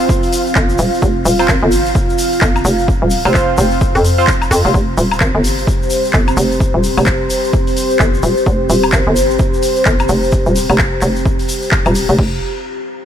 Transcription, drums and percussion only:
0.09 kick loud
0.09 shaker medium
0.23 open hi-hat medium
0.23 shaker soft
0.33 open hi-hat loud
0.33 shaker medium
0.47 shaker soft
0.55 kick loud
0.55 clap loud
0.55 shaker soft
0.69 shaker soft
0.78 open hi-hat loud
0.78 shaker loud
0.94 shaker soft
1.02 kick loud
1.02 shaker medium
1.26 open hi-hat loud
1.26 shaker loud
1.39 high woodblock medium
1.39 shaker soft
1.48 kick loud
1.48 clap loud
1.48 shaker soft
1.72 open hi-hat loud
1.72 shaker loud
1.86 shaker soft
1.95 kick loud
1.95 shaker medium
2.10 shaker soft
2.18 open hi-hat loud
2.18 shaker medium
2.32 shaker soft
2.41 kick loud
2.41 clap loud
2.41 shaker medium
2.56 high woodblock medium
2.56 shaker soft
2.65 open hi-hat loud
2.65 shaker loud
2.79 shaker soft
2.88 kick loud
2.88 shaker medium
3.10 open hi-hat loud
3.10 shaker loud
3.25 high woodblock medium
3.25 shaker soft
3.34 kick loud
3.34 clap loud
3.34 shaker medium
3.58 kick medium
3.58 open hi-hat loud
3.58 shaker medium
3.71 shaker soft
3.81 kick loud
3.81 shaker medium
3.95 open hi-hat medium
3.95 shaker soft
4.04 open hi-hat loud
4.04 shaker medium
4.19 shaker soft
4.27 kick loud
4.27 clap loud
4.27 shaker soft
4.42 high woodblock medium
4.42 shaker soft
4.51 open hi-hat loud
4.51 shaker loud
4.65 shaker soft
4.74 kick loud
4.74 shaker medium
4.98 open hi-hat loud
4.98 shaker medium
5.11 high woodblock medium
5.11 shaker soft
5.20 kick loud
5.20 clap loud
5.20 shaker medium
5.44 open hi-hat loud
5.44 shaker medium
5.59 shaker soft
5.67 kick loud
5.67 shaker medium
5.82 shaker soft
5.90 open hi-hat loud
5.90 shaker medium
6.04 shaker soft
6.13 kick loud
6.13 clap loud
6.13 shaker soft
6.28 high woodblock medium
6.28 shaker soft
6.37 open hi-hat loud
6.37 shaker medium
6.51 shaker soft
6.60 kick loud
6.60 shaker soft
6.84 open hi-hat loud
6.84 shaker medium
6.98 high woodblock medium
6.98 shaker soft
7.06 kick loud
7.06 clap loud
7.06 shaker soft
7.30 open hi-hat loud
7.30 shaker medium
7.44 shaker soft
7.53 kick loud
7.53 shaker medium
7.67 open hi-hat medium
7.67 shaker soft
7.77 open hi-hat loud
7.77 shaker medium
7.91 shaker soft
7.99 kick loud
7.99 clap loud
7.99 shaker soft
8.14 shaker soft
8.23 open hi-hat loud
8.23 shaker medium
8.37 shaker soft
8.46 kick loud
8.46 shaker soft
8.70 open hi-hat loud
8.70 shaker medium
8.83 high woodblock medium
8.83 shaker soft
8.92 kick loud
8.92 clap loud
8.92 shaker medium
9.16 open hi-hat loud
9.16 shaker medium
9.30 shaker soft
9.39 kick loud
9.39 shaker soft
9.54 shaker soft
9.63 open hi-hat loud
9.63 shaker medium
9.76 shaker soft
9.85 kick loud
9.85 clap loud
9.85 shaker soft
9.99 high woodblock medium
9.99 shaker soft
10.09 open hi-hat loud
10.09 shaker medium
10.23 shaker soft
10.32 kick loud
10.32 shaker soft
10.46 shaker soft
10.56 open hi-hat loud
10.56 shaker loud
10.70 high woodblock medium
10.70 shaker soft
10.78 kick loud
10.78 clap loud
10.78 shaker soft
11.02 clap soft
11.02 open hi-hat loud
11.02 shaker loud
11.16 shaker soft
11.26 kick loud
11.26 shaker medium
11.39 open hi-hat medium
11.39 shaker soft
11.49 open hi-hat loud
11.49 shaker medium
11.62 shaker soft
11.71 kick loud
11.71 clap loud
11.71 shaker soft
11.85 high woodblock medium
11.85 shaker soft
11.95 open hi-hat loud
11.95 shaker medium
12.09 shaker soft
12.19 kick loud
12.19 crash medium

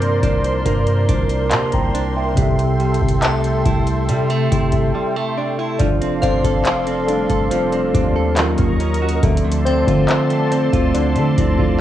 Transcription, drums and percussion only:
0.02 closed hi-hat soft
0.23 kick medium
0.23 closed hi-hat medium
0.44 closed hi-hat medium
0.66 kick medium
0.66 closed hi-hat medium
0.87 closed hi-hat soft
1.09 kick medium
1.09 closed hi-hat medium
1.29 closed hi-hat soft
1.51 clap loud
1.51 closed hi-hat medium
1.72 kick medium
1.72 closed hi-hat medium
1.95 closed hi-hat medium
2.37 kick loud
2.37 closed hi-hat medium
2.59 closed hi-hat soft
2.80 closed hi-hat soft
2.94 closed hi-hat soft
3.01 kick medium
3.08 closed hi-hat medium
3.22 clap loud
3.22 closed hi-hat medium
3.44 closed hi-hat soft
3.65 kick loud
3.65 closed hi-hat medium
3.87 closed hi-hat medium
4.09 closed hi-hat medium
4.30 closed hi-hat soft
4.51 kick medium
4.51 closed hi-hat medium
4.72 kick medium
4.72 closed hi-hat soft
5.80 kick loud
5.80 closed hi-hat medium
6.02 closed hi-hat medium
6.23 kick loud
6.23 closed hi-hat medium
6.44 kick loud
6.44 closed hi-hat medium
6.65 clap loud
6.65 closed hi-hat medium
6.87 closed hi-hat medium
7.09 closed hi-hat medium
7.29 kick medium
7.29 closed hi-hat medium
7.51 closed hi-hat medium
7.72 closed hi-hat soft
7.94 kick medium
7.94 closed hi-hat medium
8.37 clap loud
8.37 closed hi-hat medium
8.58 kick medium
8.58 closed hi-hat medium
8.80 closed hi-hat soft
8.94 closed hi-hat medium
9.09 closed hi-hat medium
9.23 kick loud
9.23 closed hi-hat medium
9.37 closed hi-hat medium
9.52 closed hi-hat medium
9.67 closed hi-hat medium
9.87 kick loud
9.87 closed hi-hat medium
10.08 clap loud
10.08 closed hi-hat medium
10.30 closed hi-hat soft
10.52 closed hi-hat medium
10.73 kick medium
10.73 closed hi-hat medium
10.95 closed hi-hat medium
11.16 closed hi-hat soft
11.37 kick medium
11.37 closed hi-hat medium
11.59 kick medium

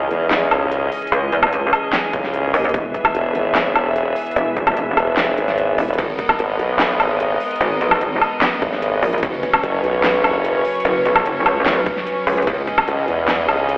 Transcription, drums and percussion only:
0.11 closed hi-hat medium
0.31 snare loud
0.31 clap medium
0.31 closed hi-hat medium
0.51 closed hi-hat medium
0.51 low woodblock medium
0.72 closed hi-hat medium
0.92 open hi-hat loud
1.02 closed hi-hat soft
1.07 closed hi-hat medium
1.12 closed hi-hat medium
1.32 closed hi-hat medium
1.43 kick loud
1.43 closed hi-hat soft
1.43 low woodblock medium
1.53 closed hi-hat medium
1.73 closed hi-hat medium
1.73 low woodblock medium
1.93 snare loud
1.93 clap medium
1.93 closed hi-hat medium
2.13 kick loud
2.13 closed hi-hat medium
2.24 snare soft
2.34 closed hi-hat medium
2.54 open hi-hat loud
2.64 closed hi-hat soft
2.69 closed hi-hat medium
2.74 kick loud
2.74 closed hi-hat medium
2.94 kick medium
2.94 closed hi-hat medium
3.05 kick loud
3.05 closed hi-hat soft
3.05 low woodblock medium
3.15 closed hi-hat medium
3.35 closed hi-hat medium
3.55 snare loud
3.55 clap medium
3.55 closed hi-hat medium
3.76 closed hi-hat medium
3.76 low woodblock medium
3.96 closed hi-hat medium
4.16 open hi-hat loud
4.26 closed hi-hat soft
4.31 closed hi-hat medium
4.36 closed hi-hat medium
4.57 kick medium
4.57 closed hi-hat medium
4.67 kick loud
4.67 closed hi-hat soft
4.67 low woodblock medium
4.77 closed hi-hat medium
4.97 closed hi-hat medium
4.97 low woodblock medium
5.17 snare loud
5.17 clap medium
5.17 closed hi-hat medium
5.38 closed hi-hat medium
5.48 snare soft
5.48 closed hi-hat soft
5.58 closed hi-hat medium
5.78 open hi-hat loud
5.88 closed hi-hat medium
5.93 closed hi-hat medium
5.98 kick loud
5.98 closed hi-hat medium
5.98 crash medium
6.19 kick medium
6.19 closed hi-hat medium
6.29 kick loud
6.29 closed hi-hat soft
6.29 low woodblock medium
6.39 closed hi-hat medium
6.39 crash soft
6.59 closed hi-hat medium
6.80 snare loud
6.80 clap medium
6.80 closed hi-hat medium
6.80 crash medium
7.00 closed hi-hat medium
7.00 low woodblock medium
7.20 closed hi-hat medium
7.20 crash soft
7.40 open hi-hat loud
7.51 closed hi-hat medium
7.56 closed hi-hat medium
7.61 closed hi-hat medium
7.61 crash medium
7.81 closed hi-hat medium
7.91 kick loud
7.91 closed hi-hat soft
7.91 low woodblock medium
8.01 closed hi-hat medium
8.01 crash soft
8.21 closed hi-hat medium
8.21 low woodblock medium
8.42 snare loud
8.42 clap loud
8.42 closed hi-hat medium
8.42 crash medium
8.62 kick loud
8.62 closed hi-hat medium
8.72 snare soft
8.82 closed hi-hat medium
8.82 crash soft
9.03 open hi-hat medium
9.13 closed hi-hat soft
9.18 closed hi-hat medium
9.23 kick loud
9.23 closed hi-hat medium
9.23 crash medium
9.43 kick medium
9.43 closed hi-hat medium
9.53 kick loud
9.53 closed hi-hat soft
9.53 low woodblock medium
9.63 closed hi-hat medium
9.63 crash soft
9.84 closed hi-hat medium
10.04 snare loud
10.04 clap medium
10.04 closed hi-hat medium
10.04 crash medium
10.24 closed hi-hat medium
10.24 low woodblock medium
10.45 closed hi-hat medium
10.45 crash soft
10.65 open hi-hat medium
10.75 closed hi-hat soft
10.80 closed hi-hat medium
10.85 closed hi-hat medium
10.85 crash medium
11.05 closed hi-hat soft
11.16 kick loud
11.16 closed hi-hat soft
11.16 low woodblock medium
11.26 closed hi-hat medium
11.26 crash medium
11.46 closed hi-hat medium
11.46 low woodblock medium
11.66 snare loud
11.66 clap medium
11.66 closed hi-hat medium
11.66 crash medium
11.86 kick loud
11.86 closed hi-hat soft
11.97 snare soft
12.07 closed hi-hat medium
12.07 crash soft
12.27 open hi-hat medium
12.37 closed hi-hat soft
12.42 closed hi-hat medium
12.47 kick loud
12.47 closed hi-hat medium
12.47 crash medium
12.67 kick medium
12.67 closed hi-hat medium
12.78 kick loud
12.78 closed hi-hat soft
12.78 low woodblock medium
12.88 closed hi-hat medium
12.88 crash soft
13.08 closed hi-hat medium
13.28 snare loud
13.28 clap medium
13.28 closed hi-hat medium
13.28 crash medium
13.49 closed hi-hat medium
13.49 low woodblock medium
13.69 closed hi-hat medium
13.69 crash soft

